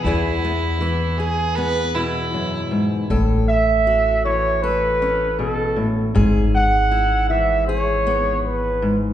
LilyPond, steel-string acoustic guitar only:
\new Staff \with { instrumentName = "Steel-string acoustic guitar" } { \time 4/4 \key a \major \tempo 4 = 79 << { <b e' gis'>8 b8 e'8 gis'8 b8 e'4. | a'4 fis'4 a'8 cis'4. | gis'4 e'4 gis'8 b4. | } \\ { <e, e>4 e4. b,8 fis,8 gis,8 | a,4. e4. b,8 a,8 | gis,4. e2 gis,8 | } >> }